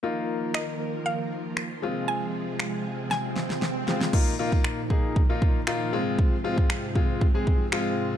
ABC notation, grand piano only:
X:1
M:4/4
L:1/16
Q:1/4=117
K:Fdor
V:1 name="Grand piano"
[B,EF]12- [B,EF]2 [A,CF]2- | [A,CF]12- [A,CF]2 [A,CF]2 | [B,EF]2 [B,EF]3 z [B,EA]2 z [B,EF]2 z [B,EF]2 [A,CF]2- | [A,CF] z [A,CF]3 z [A,CF]2 z [A,CA]2 z [A,CF]3 z |]